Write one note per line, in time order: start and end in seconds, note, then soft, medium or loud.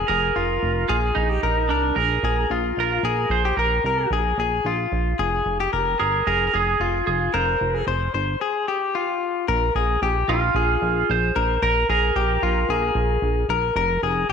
0.08 0.31 F1 loud
0.08 0.36 G#4 medium
0.08 0.85 A#4 loud
0.36 0.58 F1 medium
0.36 0.87 F4 medium
0.62 0.85 F1 loud
0.88 1.12 A#1 loud
0.88 0.96 F4 medium
0.88 1.29 G#4 medium
1.15 1.39 A#1 loud
1.15 1.71 D#4 medium
1.29 1.43 G4 medium
1.43 1.71 A#1 loud
1.43 1.69 A#4 medium
1.69 1.92 C2 medium
1.69 1.95 D4 medium
1.69 1.97 A#4 medium
1.96 2.19 A#1 medium
1.96 2.23 G#4 medium
1.96 2.46 A#4 medium
2.23 2.46 A#1 loud
2.23 2.51 G#4 medium
2.50 2.73 A#1 medium
2.50 3.01 F4 medium
2.77 2.99 A#1 medium
2.77 3.29 A#4 medium
3.03 3.26 A#1 loud
3.03 3.43 G#4 medium
3.30 3.52 A#1 loud
3.30 3.56 C5 medium
3.45 3.58 G4 medium
3.57 3.80 A#1 medium
3.57 4.08 A#4 medium
3.57 3.85 A#4 medium
3.84 4.06 C2 medium
3.84 4.12 A#4 medium
4.11 4.33 A#1 loud
4.11 4.39 G#4 medium
4.38 4.60 A#1 loud
4.38 4.66 G#4 medium
4.65 4.87 A#1 medium
4.65 5.16 F4 medium
4.92 5.14 A#1 medium
5.19 5.41 F1 loud
5.19 5.57 G#4 medium
5.46 5.68 F1 loud
5.60 5.72 G4 medium
5.73 5.95 F1 loud
5.73 5.98 A#4 medium
5.99 6.22 G1 medium
5.99 6.27 G#4 medium
5.99 6.26 A#4 medium
6.27 6.49 F1 loud
6.27 6.52 G#4 medium
6.27 6.46 A#4 medium
6.47 6.54 A#4 medium
6.54 6.75 F1 loud
6.54 6.80 G#4 medium
6.54 7.06 G#4 medium
6.80 7.02 F1 loud
6.80 7.31 F4 medium
7.07 7.29 F1 medium
7.07 7.35 G#4 medium
7.34 7.56 F1 loud
7.34 7.74 A#4 medium
7.34 7.84 C5 medium
7.61 7.83 F1 medium
7.74 7.87 G#4 medium
7.87 8.09 F1 medium
7.87 8.13 C5 medium
8.14 8.36 G1 medium
8.14 8.41 C5 medium
8.41 8.68 G#4 medium
8.68 8.95 G4 medium
8.95 9.45 F4 medium
9.48 9.70 A#1 loud
9.48 9.75 A#4 medium
9.75 9.97 A#1 loud
9.75 10.02 G#4 medium
10.02 10.24 A#1 loud
10.02 10.29 G4 medium
10.28 10.50 A#1 loud
10.28 11.12 F4 medium
10.28 10.56 F4 medium
10.54 10.77 A#1 loud
10.54 11.32 G#4 medium
10.82 11.04 A#1 loud
11.09 11.31 A#1 loud
11.09 11.63 C5 medium
11.36 11.58 A#1 loud
11.36 11.61 A#4 medium
11.62 11.84 A#1 loud
11.62 11.89 A#4 medium
11.62 11.89 A#4 loud
11.89 12.11 A#1 loud
11.89 12.16 G#4 medium
11.89 13.46 A#4 medium
12.16 12.38 A#1 loud
12.16 12.43 G4 medium
12.42 12.65 A#1 medium
12.42 12.70 F4 medium
12.69 12.91 A#1 loud
12.69 13.46 G#4 medium
12.95 13.18 A#1 loud
13.22 13.45 A#1 loud
13.49 13.71 A#1 loud
13.49 13.75 A#4 medium
13.76 13.98 F1 loud
13.76 14.03 A#4 loud
14.03 14.25 F1 loud
14.03 14.29 G#4 medium
14.29 14.32 F1 loud